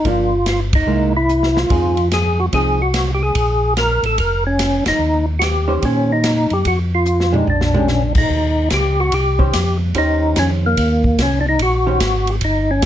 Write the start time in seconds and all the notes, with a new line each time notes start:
0.04 G1 F3 A#3 D4 F4, kick, ride
0.46 F4, snare, hi-hat pedal, ride
0.73 D#4, kick, ride
0.87 C2 G#3 A#3 E4
1.17 E4
1.29 hi-hat pedal
1.43 snare
1.57 F4, snare
1.70 F2 F3 C4 D#4 G#4, kick, ride
1.97 ride
2.11 G#4, snare, hi-hat pedal, ride
2.40 F#4
2.53 C2 F3 C4 D#4 G#4, kick, ride
2.82 F#4
2.94 snare, hi-hat pedal, ride
3.14 G4
3.23 G#4
3.35 A#1, kick, ride
3.77 A#4, snare, hi-hat pedal, ride
4.03 A1 A4, ride
4.18 F1 A#4, kick, ride
4.47 C#4
4.59 snare, hi-hat pedal, ride
4.85 F1 D#4, snare, ride
4.99 D#2
5.39 F#4 G4, snare, hi-hat pedal, ride
5.68 D#3 C#4 G4 C5
5.82 A#2 C#4, kick, ride
6.12 D#4
6.24 snare, hi-hat pedal, ride
6.50 F#2 G4, ride
6.65 F2 F#4, kick, ride
6.95 F4
7.05 hi-hat pedal
7.20 snare
7.33 G#3 D4 D#4 G4, mid tom
7.47 A#1 D4, floor tom
7.61 snare
7.74 G#3 C#4 D4 G4, mid tom
7.88 C#4, snare, hi-hat pedal
8.15 D#4, kick, crash
8.30 D#2, kick
8.70 C#2 G4, kick, snare, hi-hat pedal, ride
9.00 F#4
9.12 C2 G4, kick, ride
9.39 D#3 C#4 G4 C5, kick
9.53 F2, kick, snare, hi-hat pedal, ride
9.95 D#2 D#3 C#4 D#4 G4 C5, kick, ride
10.36 F2 C#4, kick, snare, hi-hat pedal, ride
10.66 A#3
10.77 D#2, kick, ride
11.04 kick
11.18 C2 C#4, kick, snare, hi-hat pedal, ride
11.41 D4
11.49 D#4
11.59 A#1 F#4, kick, ride
11.87 D#3 C#4 G4 C5
12.00 G#1, kick, snare, hi-hat pedal, ride
12.27 G4, ride
12.41 G1 D#4, kick, ride
12.71 C#4
12.82 F1, hi-hat pedal, ride